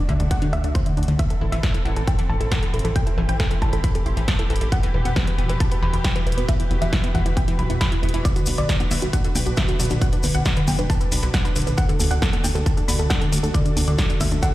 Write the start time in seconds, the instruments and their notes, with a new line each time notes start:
Already playing: string section A3 D4 F#4
0.09 analog synth bass D2, synth arpeggio sound D3, synth pluck E5, kick, closed hi-hat
0.20 analog synth bass D2, synth arpeggio sound D3, synth pluck D4, closed hi-hat
0.31 synth arpeggio sound D4, synth pluck F#5, kick, closed hi-hat
0.42 synth arpeggio sound D3, synth pluck D4, closed hi-hat
0.53 analog synth bass D2, synth arpeggio sound D3, synth pluck E5, closed hi-hat
0.64 analog synth bass D2, synth pluck D4, synth arpeggio sound D4, closed hi-hat
0.75 synth arpeggio sound D3, synth pluck C5, kick, closed hi-hat
0.86 synth arpeggio sound D3, synth pluck D4, closed hi-hat
0.97 analog synth bass D2, synth pluck D4, synth arpeggio sound D4, closed hi-hat
1.03 closed hi-hat
1.08 analog synth bass D2, synth arpeggio sound D3, synth pluck D4, closed hi-hat
1.19 synth arpeggio sound E3, string section C4 E4 A4, synth pluck E5, kick, closed hi-hat
1.30 synth arpeggio sound E3, synth pluck A4, closed hi-hat
1.41 analog synth bass A1, synth arpeggio sound E4, synth pluck A4
1.52 analog synth bass A1, synth arpeggio sound E3, synth pluck E5, closed hi-hat
1.63 synth arpeggio sound E3, synth pluck A4, kick, snare, closed hi-hat
1.74 synth arpeggio sound E4, synth pluck A4, closed hi-hat
1.85 analog synth bass A1, synth arpeggio sound E3, synth pluck F#5, closed hi-hat
1.96 analog synth bass A1, synth arpeggio sound E3, synth pluck A4, closed hi-hat
2.07 synth arpeggio sound E4, synth pluck G5, kick, closed hi-hat
2.18 synth arpeggio sound E3, synth pluck A4, closed hi-hat
2.29 analog synth bass A1, synth arpeggio sound E3, synth pluck A5
2.40 analog synth bass A1, synth arpeggio sound E4, synth pluck A4, closed hi-hat
2.51 synth arpeggio sound E3, synth pluck F#5, kick, snare, closed hi-hat
2.62 synth arpeggio sound E3, synth pluck A4, closed hi-hat
2.73 analog synth bass A1, synth arpeggio sound E4, synth pluck A4, closed hi-hat
2.79 closed hi-hat
2.85 analog synth bass A1, synth arpeggio sound E3, synth pluck A4, closed hi-hat
2.96 synth arpeggio sound E3, string section G4, synth pluck G5, kick, closed hi-hat
3.07 synth arpeggio sound E4, synth pluck A4, closed hi-hat
3.18 analog synth bass A1, synth arpeggio sound E3, synth pluck A4
3.29 analog synth bass A1, synth arpeggio sound E3, synth pluck G5, closed hi-hat
3.40 synth arpeggio sound E4, synth pluck A4, kick, snare, closed hi-hat
3.51 synth arpeggio sound E3, synth pluck A4, closed hi-hat
3.62 analog synth bass A1, synth arpeggio sound E3, synth pluck A5, kick, closed hi-hat
3.73 analog synth bass A1, synth arpeggio sound E4, synth pluck A4, closed hi-hat
3.84 synth arpeggio sound E3, synth pluck B5, kick, closed hi-hat
3.95 synth arpeggio sound E3, synth pluck A4, closed hi-hat
4.06 analog synth bass A1, synth arpeggio sound E4, synth pluck C6, closed hi-hat
4.17 analog synth bass A1, synth arpeggio sound E3, synth pluck A4, closed hi-hat
4.28 synth arpeggio sound E3, synth pluck A5, kick, snare, closed hi-hat
4.39 synth arpeggio sound E4, synth pluck A4, closed hi-hat
4.50 analog synth bass A1, synth arpeggio sound E3, synth pluck A4, closed hi-hat
4.56 closed hi-hat
4.61 analog synth bass A1, synth arpeggio sound E3, synth pluck A4, closed hi-hat
4.72 string section E3 F#4 B4, synth arpeggio sound B3, synth pluck F#5, kick, closed hi-hat
4.83 synth arpeggio sound E3, synth pluck B4, closed hi-hat
4.94 analog synth bass E1, synth arpeggio sound E3, synth pluck B4
5.05 analog synth bass E1, synth arpeggio sound B3, synth pluck F#5, closed hi-hat
5.16 synth arpeggio sound E3, synth pluck B4, kick, snare, closed hi-hat
5.27 synth arpeggio sound E3, synth pluck B4, closed hi-hat
5.38 analog synth bass E1, synth arpeggio sound B3, synth pluck G5, closed hi-hat
5.49 analog synth bass E1, synth arpeggio sound E3, synth pluck B4, closed hi-hat
5.60 synth arpeggio sound E3, synth pluck A5, kick, closed hi-hat
5.71 synth arpeggio sound B3, synth pluck B4, closed hi-hat
5.82 analog synth bass E1, synth arpeggio sound E3, synth pluck B5
5.93 analog synth bass E1, synth arpeggio sound E3, synth pluck B4, closed hi-hat
6.04 synth arpeggio sound B3, synth pluck G5, kick, snare, closed hi-hat
6.15 synth arpeggio sound E3, synth pluck B4, closed hi-hat
6.26 analog synth bass E1, synth arpeggio sound E3, synth pluck B4, closed hi-hat
6.32 closed hi-hat
6.37 analog synth bass E1, synth arpeggio sound B3, synth pluck B4, closed hi-hat
6.49 synth arpeggio sound E3, synth pluck E5, kick, closed hi-hat
6.60 synth arpeggio sound E3, synth pluck E4, closed hi-hat
6.71 analog synth bass E1, synth arpeggio sound B3, synth pluck E4, closed hi-hat
6.82 analog synth bass E1, synth arpeggio sound E3, synth pluck E5, closed hi-hat
6.93 synth arpeggio sound E3, synth pluck E4, kick, snare, closed hi-hat
7.04 synth arpeggio sound B3, synth pluck E4, closed hi-hat
7.15 analog synth bass E1, synth arpeggio sound E3, synth pluck F#5, kick, closed hi-hat
7.26 analog synth bass E1, synth arpeggio sound E3, synth pluck E4, closed hi-hat
7.37 synth arpeggio sound B3, synth pluck G5, kick, closed hi-hat
7.48 synth arpeggio sound E3, synth pluck E4, closed hi-hat
7.59 analog synth bass B1, synth arpeggio sound E3, synth pluck B5, closed hi-hat
7.70 analog synth bass E1, synth arpeggio sound B3, synth pluck E4, closed hi-hat
7.81 synth arpeggio sound E3, synth pluck B5, kick, snare, closed hi-hat
7.92 synth arpeggio sound E3, synth pluck E4, closed hi-hat
8.03 analog synth bass E1, synth arpeggio sound B3, synth pluck E4, closed hi-hat
8.09 closed hi-hat
8.14 analog synth bass E1, synth arpeggio sound E3, synth pluck E4, closed hi-hat
8.25 synth arpeggio sound D3, string section D4, synth pluck D5, kick, closed hi-hat, cabasa
8.36 synth arpeggio sound D3, synth pluck F#4, closed hi-hat, cabasa
8.46 analog synth bass B1, synth arpeggio sound D4, synth pluck F#4, open hi-hat, high conga, cabasa
8.58 analog synth bass B1, synth arpeggio sound D3, synth pluck D5, closed hi-hat, cabasa
8.69 synth pluck F#4, kick, snare, closed hi-hat, cabasa
8.80 synth arpeggio sound D4, synth pluck F#4, closed hi-hat, high conga, cabasa
8.91 analog synth bass B1, synth arpeggio sound D3, synth pluck E5, open hi-hat, high conga, cabasa
9.02 analog synth bass B1, synth arpeggio sound D3, synth pluck F#4, closed hi-hat, cabasa
9.13 synth arpeggio sound D4, synth pluck F#5, kick, closed hi-hat, cabasa
9.24 synth arpeggio sound D3, synth pluck F#4, closed hi-hat, cabasa
9.35 analog synth bass B1, synth arpeggio sound D3, synth pluck G5, open hi-hat, high conga, cabasa
9.46 analog synth bass B1, synth arpeggio sound D4, synth pluck F#4, closed hi-hat, cabasa
9.57 synth arpeggio sound D3, synth pluck E5, kick, snare, closed hi-hat, cabasa
9.68 synth arpeggio sound D3, synth pluck F#4, closed hi-hat, cabasa
9.79 analog synth bass B1, synth arpeggio sound D4, synth pluck F#4, open hi-hat, cabasa
9.85 closed hi-hat
9.90 analog synth bass B1, synth arpeggio sound D3, synth pluck F#4, closed hi-hat, cabasa
10.02 synth arpeggio sound D3, synth pluck F#5, kick, closed hi-hat, cabasa
10.12 synth arpeggio sound D4, synth pluck B4, closed hi-hat, cabasa
10.23 analog synth bass B1, synth arpeggio sound D3, synth pluck B4, open hi-hat, high conga, cabasa
10.34 analog synth bass B1, synth arpeggio sound D3, synth pluck F#5, closed hi-hat, cabasa
10.45 synth arpeggio sound D4, synth pluck B4, kick, snare, closed hi-hat, cabasa
10.56 synth arpeggio sound D3, synth pluck B4, closed hi-hat, cabasa
10.67 analog synth bass B1, synth arpeggio sound D3, synth pluck G5, kick, open hi-hat, high conga, cabasa
10.78 analog synth bass B1, synth arpeggio sound D4, synth pluck B4, closed hi-hat, cabasa
10.90 synth arpeggio sound D3, synth pluck A5, kick, closed hi-hat, cabasa
11.00 synth arpeggio sound D3, synth pluck B4, closed hi-hat, cabasa
11.12 analog synth bass B1, synth arpeggio sound D4, synth pluck B5, open hi-hat, cabasa
11.23 analog synth bass B1, synth arpeggio sound D3, synth pluck B4, closed hi-hat, cabasa
11.34 synth arpeggio sound D3, synth pluck F#5, kick, snare, closed hi-hat, cabasa
11.45 synth arpeggio sound D4, synth pluck B4, closed hi-hat, cabasa
11.56 analog synth bass B1, synth arpeggio sound D3, synth pluck B4, open hi-hat, cabasa
11.62 closed hi-hat
11.67 analog synth bass B1, synth arpeggio sound D3, synth pluck B4, closed hi-hat, cabasa
11.78 synth arpeggio sound D4, string section F#4 A4, synth pluck F#5, kick, closed hi-hat, cabasa
11.89 synth arpeggio sound D3, synth pluck A4, closed hi-hat, cabasa
12.00 analog synth bass D2, synth arpeggio sound D3, synth pluck A4, open hi-hat, high conga, cabasa
12.11 analog synth bass D2, synth arpeggio sound D4, synth pluck F#5, closed hi-hat, cabasa
12.22 synth arpeggio sound D3, synth pluck A4, kick, snare, closed hi-hat, cabasa
12.33 synth arpeggio sound D3, synth pluck A4, closed hi-hat, high conga, cabasa
12.44 analog synth bass D2, synth arpeggio sound D4, synth pluck G5, open hi-hat, high conga, cabasa
12.55 analog synth bass D2, synth arpeggio sound D3, synth pluck A4, closed hi-hat, cabasa
12.66 synth arpeggio sound D3, synth pluck A5, kick, closed hi-hat, cabasa
12.77 synth arpeggio sound D4, synth pluck A4, closed hi-hat, cabasa
12.88 analog synth bass D2, synth arpeggio sound D3, synth pluck B5, open hi-hat, high conga, cabasa
12.99 analog synth bass D2, synth arpeggio sound D3, synth pluck A4, cabasa
13.10 synth arpeggio sound D4, synth pluck F#5, kick, snare, closed hi-hat, cabasa
13.21 synth arpeggio sound D3, synth pluck A4, closed hi-hat, cabasa
13.32 analog synth bass D2, synth arpeggio sound D3, synth pluck A4, open hi-hat, cabasa
13.38 closed hi-hat
13.43 analog synth bass D2, synth arpeggio sound D4, synth pluck A4, closed hi-hat, cabasa
13.54 synth arpeggio sound D3, synth pluck D5, kick, closed hi-hat, cabasa
13.65 synth arpeggio sound D3, synth pluck D4, closed hi-hat, cabasa
13.77 analog synth bass D2, synth arpeggio sound D4, synth pluck D4, open hi-hat, high conga, cabasa
13.87 analog synth bass D2, synth arpeggio sound D3, synth pluck D5, closed hi-hat, cabasa
13.98 synth arpeggio sound D3, synth pluck D4, kick, snare, closed hi-hat, cabasa
14.10 synth arpeggio sound D4, synth pluck D4, closed hi-hat, cabasa
14.21 analog synth bass D2, synth arpeggio sound D3, synth pluck E5, kick, open hi-hat, high conga, cabasa
14.31 analog synth bass D2, synth arpeggio sound D3, synth pluck D4, cabasa
14.42 synth arpeggio sound D4, synth pluck F#5, kick, closed hi-hat, cabasa